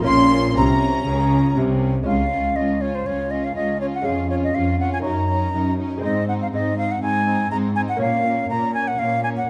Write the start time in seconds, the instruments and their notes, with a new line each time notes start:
0.02 lute A#3 C#4 F4, violin section C6
0.06 double bass section A#1, cello section A#2, lute A#2, viola section C#4, flute C6, violin section C6
0.56 double bass section C2, cello section C3, lute C3, viola section C#4, violin section A#5, flute A#5
1.07 double bass section C#2, cello section C#3, lute C#3
1.57 double bass section C2, lute C3, cello section C3
2.03 cello section C#2, lute G#3 C#4 F4, violin section F4 G#4, flute F5
2.07 viola section C#4
2.31 viola section C#4, violin section F4 G#4
2.56 cello section C#2, viola section C#4, violin section F4 G#4, flute D#5
2.81 viola section C#4, violin section F4 G#4, flute C#5
2.95 flute C5
3.06 cello section C#2, viola section C#4, violin section F4 G#4, flute C#5
3.31 viola section C#4, violin section F4 G#4, flute D#5
3.44 flute F5
3.56 cello section C#2, viola section C#4, violin section F4 G#4, flute D#5
3.81 viola section C#4, violin section F4 G#4, flute C#5
3.94 flute F#5
4.02 cello section F2, lute G#3 C#4 G#4, violin section G#4, flute F5
4.06 lute F2, viola section C#4, violin section F4
4.30 viola section C#4, violin section F4 G#4, flute C#5
4.43 flute D#5
4.55 cello section F2, lute F2, viola section C#4, violin section F4 G#4, flute F5
4.79 viola section C#4, violin section F4 G#4, flute F#5
4.93 flute G#5
5.00 lute A#3 D#4 C#5
5.04 lute F#2, cello section F#2, viola section C#4, violin section D#4 A#4, flute A#5
5.29 viola section C#4, violin section D#4 A#4
5.54 cello section F#2, lute F#2, viola section C#4, violin section D#4 A#4
5.79 viola section C#4, violin section D#4 A#4
5.98 lute G#3 C4 D#4
6.02 cello section G#2, lute G#2 C5, viola section C4, violin section D#4 C5, flute D#5
6.28 viola section C4, violin section D#4 C5, flute F#5
6.42 flute F5
6.53 cello section G#2, lute G#2, viola section C4, violin section D#4 C5, flute D#5
6.78 viola section C4, violin section D#4 C5, flute F5
6.91 flute F#5
7.02 lute G#2, cello section G#2, viola section C4, violin section D#4 C5, flute G#5
7.27 viola section C4, violin section D#4 C5
7.51 cello section G#2, lute G#2, viola section C4, violin section D#4 C5, flute A#5
7.76 viola section C4, violin section D#4 C5, flute G#5
7.89 flute F#5
7.97 lute A#3 C#4 C#5, viola section A#3
8.01 cello section A#2, lute A#2, violin section C#4 C#5, flute F5
8.25 viola section A#3, violin section C#4 C#5
8.50 lute A#2, cello section A#2, viola section A#3, violin section C#4 C#5, flute A#5
8.74 viola section A#3, violin section C#4 C#5, flute G#5
8.88 flute F#5
8.99 lute A#2, cello section A#2, viola section A#3, violin section C#4 C#5, flute F5
9.24 viola section A#3, violin section C#4 C#5, flute G#5
9.37 flute F#5